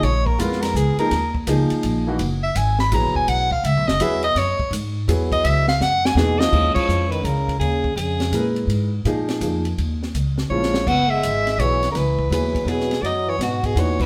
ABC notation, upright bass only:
X:1
M:3/4
L:1/8
Q:"Swing" 1/4=166
K:Ebphr
V:1 name="Upright bass" clef=bass
B,,,2 =F,,2 D,, z | E,,2 D,, z B,,,2 | G,,,2 A,,,2 (3B,,, G,,, F,,, | C,,2 (3D,, C,, G,,, F,,2 |
G,, z A,,2 F,,2 | D,,2 G,,2 F,,2 | E,, z =F,,2 D,,2 | E,,2 =F,,2 B,,2 |
A,,2 B,,2 =F,,2 | E,,2 D,,2 B,,,2 | G,,,2 A,,,2 C,,2 | D,,2 E,,2 F,,2 |
G,,2 A,,2 F,,2 |]